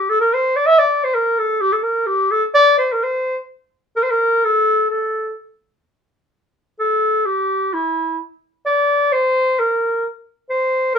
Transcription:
clarinet
Already playing: G4
0.09 A4
0.21 A#4
0.34 C5
0.56 D5
0.66 E5
0.79 D5
1.04 C5
1.14 A#4
1.39 A4
1.61 G4
1.73 A4
1.83 A#4
2.07 G4
2.31 A4
2.54 D5
2.78 C5
2.92 A#4
3.03 C5
3.96 A#4
4.03 C5
4.10 A#4
4.44 A4
4.90 A4
6.80 A4
7.26 G4
7.73 E4
8.66 D5
9.12 C5
9.59 A#4
10.50 C5
10.95 A#4

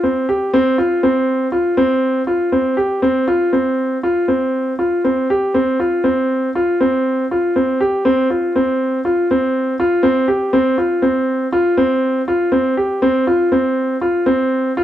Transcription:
grand piano
0.03 C4
0.29 G4
0.54 C4
0.78 F4
1.03 C4
1.52 F4
1.77 C4
2.27 F4
2.52 C4
2.77 G4
3.02 C4
3.28 F4
3.53 C4
4.03 F4
4.28 C4
4.79 F4
5.04 C4
5.30 G4
5.54 C4
5.80 F4
6.04 C4
6.55 F4
6.81 C4
7.31 F4
7.56 C4
7.81 G4
8.05 C4
8.30 F4
8.56 C4
9.05 F4
9.31 C4
9.80 F4
10.03 C4
10.28 G4
10.53 C4
10.78 F4
11.02 C4
11.52 F4
11.77 C4
12.28 F4
12.52 C4
12.77 G4
13.02 C4
13.27 F4
13.52 C4
14.01 F4
14.26 C4
14.77 F4

